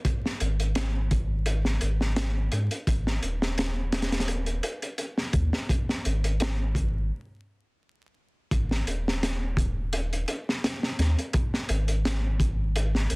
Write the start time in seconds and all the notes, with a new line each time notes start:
0.05 kick, closed hi-hat
0.26 snare
0.40 G#1, closed hi-hat
0.60 closed hi-hat
0.75 snare, closed hi-hat
1.11 kick, closed hi-hat
1.46 closed hi-hat
1.65 snare
1.81 G#1, closed hi-hat
2.01 snare
2.16 snare, closed hi-hat
2.52 G#2, closed hi-hat
2.71 closed hi-hat
2.87 G#1, kick, closed hi-hat
3.07 snare
3.22 D#1, closed hi-hat
3.42 snare
3.58 snare, closed hi-hat
3.92 snare, closed hi-hat
4.02 snare, closed hi-hat
4.12 snare, closed hi-hat
4.20 snare, closed hi-hat
4.28 closed hi-hat
4.46 closed hi-hat
4.63 closed hi-hat
4.82 closed hi-hat
4.98 closed hi-hat
5.18 snare
5.33 D#2, kick, closed hi-hat
5.53 snare
5.69 kick, closed hi-hat
5.89 snare
6.05 G#1, closed hi-hat
6.24 closed hi-hat
6.40 snare, closed hi-hat
6.75 kick, closed hi-hat
8.51 G#1, kick, closed hi-hat
8.71 snare
8.86 D#1, closed hi-hat
9.08 snare
9.23 snare, closed hi-hat
9.57 kick, closed hi-hat
9.93 closed hi-hat
10.13 closed hi-hat
10.28 closed hi-hat
10.49 snare
10.64 snare, closed hi-hat
10.83 snare
10.99 D#2, snare, closed hi-hat
11.19 closed hi-hat
11.33 kick, closed hi-hat
11.54 snare
11.69 G#1, closed hi-hat
11.88 closed hi-hat
12.05 snare, closed hi-hat
12.40 kick, closed hi-hat
12.76 closed hi-hat
12.95 snare
13.10 G#1, closed hi-hat